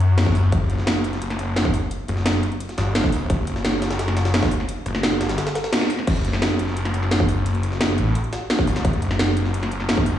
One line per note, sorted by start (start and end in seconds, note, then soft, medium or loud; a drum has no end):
0.00 0.51 F#2 loud
0.00 closed hi-hat medium
0.18 snare loud
0.18 closed hi-hat medium
0.26 kick loud
0.26 snare soft
0.35 open hi-hat medium
0.52 0.68 F#1 loud
0.52 kick loud
0.52 closed hi-hat medium
0.70 1.20 F#1 loud
0.70 closed hi-hat medium
0.79 snare medium
0.87 snare loud
0.87 closed hi-hat medium
1.04 closed hi-hat medium
1.13 snare soft
1.13 closed hi-hat soft
1.22 1.72 F#1 loud
1.22 closed hi-hat medium
1.30 snare soft
1.30 closed hi-hat soft
1.39 closed hi-hat medium
1.56 snare loud
1.56 closed hi-hat medium
1.65 kick loud
1.74 closed hi-hat medium
1.74 open hi-hat medium
1.91 closed hi-hat loud
1.91 closed hi-hat medium
2.08 2.42 F#1 loud
2.08 closed hi-hat medium
2.17 snare medium
2.26 snare loud
2.26 closed hi-hat medium
2.43 closed hi-hat medium
2.52 closed hi-hat soft
2.60 closed hi-hat medium
2.69 snare soft
2.69 closed hi-hat soft
2.78 3.28 G1 loud
2.78 snare loud
2.78 closed hi-hat medium
2.95 snare loud
2.95 closed hi-hat medium
3.04 kick loud
3.04 snare soft
3.12 open hi-hat medium
3.30 3.46 F#1 loud
3.30 kick loud
3.30 closed hi-hat loud
3.30 closed hi-hat medium
3.47 3.98 F#1 loud
3.47 closed hi-hat medium
3.56 snare medium
3.65 snare loud
3.65 closed hi-hat loud
3.65 closed hi-hat medium
3.82 snare loud
3.82 closed hi-hat medium
3.91 snare loud
3.91 closed hi-hat medium
3.91 closed hi-hat soft
3.99 4.50 F#1 loud
3.99 snare loud
3.99 closed hi-hat medium
3.99 closed hi-hat loud
4.08 snare soft
4.08 closed hi-hat soft
4.17 snare loud
4.17 closed hi-hat medium
4.25 snare loud
4.25 closed hi-hat medium
4.34 snare loud
4.34 closed hi-hat medium
4.43 kick loud
4.43 snare loud
4.43 closed hi-hat medium
4.51 closed hi-hat medium
4.51 open hi-hat medium
4.60 snare soft
4.69 closed hi-hat medium
4.69 closed hi-hat loud
4.86 5.19 F#1 loud
4.86 closed hi-hat medium
4.95 snare medium
5.03 snare loud
5.03 closed hi-hat medium
5.03 closed hi-hat loud
5.21 5.38 G1 loud
5.21 snare loud
5.21 closed hi-hat medium
5.29 snare loud
5.29 closed hi-hat medium
5.29 closed hi-hat soft
5.38 snare loud
5.38 closed hi-hat medium
5.47 snare loud
5.47 closed hi-hat medium
5.47 closed hi-hat soft
5.55 snare loud
5.55 closed hi-hat medium
5.64 snare loud
5.64 closed hi-hat medium
5.73 snare loud
5.73 closed hi-hat loud
5.73 closed hi-hat medium
5.81 snare soft
5.81 snare medium
5.90 open hi-hat medium
5.99 snare soft
6.07 6.58 F#1 loud
6.07 kick loud
6.07 closed hi-hat loud
6.07 closed hi-hat medium
6.07 crash loud
6.16 closed hi-hat soft
6.25 closed hi-hat medium
6.33 snare medium
6.42 snare loud
6.42 closed hi-hat loud
6.42 closed hi-hat medium
6.59 7.97 F#1 loud
6.59 closed hi-hat medium
6.68 snare soft
6.77 closed hi-hat loud
6.77 closed hi-hat medium
6.85 snare soft
6.85 closed hi-hat soft
6.94 closed hi-hat medium
7.03 snare soft
7.11 snare loud
7.11 closed hi-hat medium
7.11 closed hi-hat loud
7.20 kick loud
7.29 closed hi-hat medium
7.29 open hi-hat medium
7.46 closed hi-hat loud
7.46 closed hi-hat medium
7.55 closed hi-hat soft
7.63 closed hi-hat medium
7.72 snare medium
7.81 snare loud
7.81 closed hi-hat loud
7.81 closed hi-hat medium
7.98 8.14 A1 loud
7.98 closed hi-hat medium
8.15 closed hi-hat medium
8.24 closed hi-hat soft
8.33 snare loud
8.33 closed hi-hat medium
8.50 snare loud
8.50 closed hi-hat medium
8.59 kick loud
8.59 snare soft
8.67 8.83 G1 loud
8.67 open hi-hat medium
8.76 snare loud
8.76 snare soft
8.76 closed hi-hat medium
8.85 9.35 F#1 loud
8.85 kick loud
8.85 closed hi-hat medium
8.93 closed hi-hat soft
9.02 closed hi-hat medium
9.11 snare medium
9.19 snare loud
9.19 closed hi-hat loud
9.19 closed hi-hat medium
9.37 10.19 F#1 loud
9.37 closed hi-hat medium
9.45 snare soft
9.54 closed hi-hat medium
9.63 snare medium
9.63 closed hi-hat soft
9.71 closed hi-hat medium
9.80 snare soft
9.89 snare loud
9.89 closed hi-hat medium
9.97 kick loud
10.06 closed hi-hat medium
10.06 open hi-hat medium